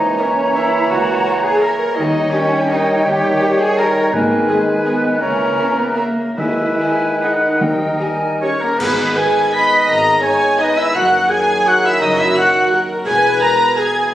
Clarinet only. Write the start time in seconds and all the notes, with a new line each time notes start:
Already playing: D#5
0.20 C#5
0.56 E5
0.90 F#5
1.43 G#5
1.61 A#5
1.95 D#5
2.30 C#5
2.67 D#5
3.04 G5
3.60 G#5
3.78 A#5
4.14 A#4
4.50 G#4
4.87 B4
5.22 C#5
5.78 B4
5.98 A#4
6.39 E5
7.24 D#5
8.42 C#4
8.63 A#3
8.81 B3
9.17 G#4
9.54 B4
9.88 A#4
10.22 G#4
10.59 D#4
10.78 E4
10.96 F#4
11.30 G#4
11.67 F#4
11.84 E4
12.00 D#4
12.18 E4
12.37 F#4
13.05 G#4
13.42 A#4
13.78 G#4